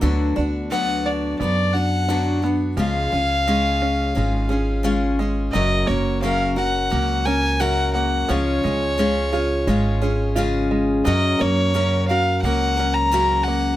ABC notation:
X:1
M:4/4
L:1/16
Q:1/4=87
K:F#
V:1 name="Fiddle"
z4 f2 =d2 d2 f4 z2 | e12 z4 | d2 c2 e2 f4 g2 f2 f2 | c12 z4 |
d2 c4 e2 f3 a3 f2 |]
V:2 name="Steel-string acoustic guitar"
[=D,F,B,=DF]2 [B,DF]2 [D,F,B,DF]4 [F,B,DF]2 [B,DF]2 [D,F,B,DF]2 [B,DF]2 | [C,G,CEG]2 [CEG]2 [C,G,CEG]4 [G,CEG]2 [CEG]2 [C,G,CEG]2 [CEG]2 | [F,,C,F,CFA]2 [F,CFA]2 [F,,C,F,CFA]2 [F,CFA]2 [F,CFA]2 [F,CFA]2 [F,,C,F,CFA]4 | [C,G,CEG]2 [CEG]2 [C,G,CEG]2 [CEG]2 [G,CEG]2 [CEG]2 [C,G,CEG]4 |
[F,,C,F,CFA]2 [F,CFA]2 [F,,C,F,CFA]2 [F,CFA]2 [F,CFA]2 [F,CFA]2 [F,,C,F,CFA]4 |]
V:3 name="Five-string banjo"
=D,2 =D2 B,2 D2 B,2 D2 F2 B,2 | E,2 C2 G,2 C2 G,2 C2 E2 G,2 | F,2 A,2 C2 F2 A,2 C2 F2 A,2 | E,2 G,2 C2 E2 G,2 C2 E2 G,2 |
F,2 A,2 C2 F2 A,2 C2 F2 A,2 |]
V:4 name="Upright bass" clef=bass
=D,,2 D,,6 F,,8 | C,,2 C,,6 G,,,8 | F,,,2 F,,,6 C,,8 | C,,2 C,,6 G,,,8 |
F,,2 F,,6 C,,8 |]